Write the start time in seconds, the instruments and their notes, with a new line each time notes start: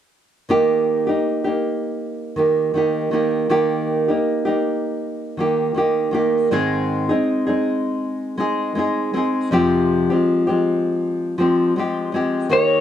0.49 nylon-string guitar D#3 A#3 D#4 G4
1.07 nylon-string guitar A#3 D#4 G4
1.44 nylon-string guitar A#3 D#4 G4
2.36 nylon-string guitar D#3 A#3 D#4 G4
2.74 nylon-string guitar D#3 A#3 D#4 G4
3.11 nylon-string guitar D#3 A#3 D#4 G4
3.49 nylon-string guitar D#3 A#3 D#4 G4
4.08 nylon-string guitar A#3 D#4 G4
4.45 nylon-string guitar A#3 D#4 G4
5.37 nylon-string guitar D#3 A#3 D#4 G4
5.74 nylon-string guitar D#3 A#3 D#4 G4
6.11 nylon-string guitar D#3 A#3 D#4 G4
6.51 nylon-string guitar G#2 D#3 G#3 C4 D#4 G#4
7.09 nylon-string guitar G#3 C4 D#4 G#4
7.47 nylon-string guitar G#3 C4 D#4 G#4
8.37 nylon-string guitar G#3 C4 D#4 G#4
8.75 nylon-string guitar G#3 C4 D#4 G#4
9.13 nylon-string guitar G#3 C4 D#4 G#4
9.51 nylon-string guitar F2 C3 F3 G#3 C4 G4
10.10 nylon-string guitar F3 G#3 C4 G4
10.47 nylon-string guitar F3 G#3 C4 G4
11.38 nylon-string guitar F3 G#3 C4 G4
11.76 nylon-string guitar F3 G#3 C4 G4
12.12 nylon-string guitar F3 G#3 C4 G4
12.49 nylon-string guitar D#3 A#3 D#4 G4, electric slide guitar C#5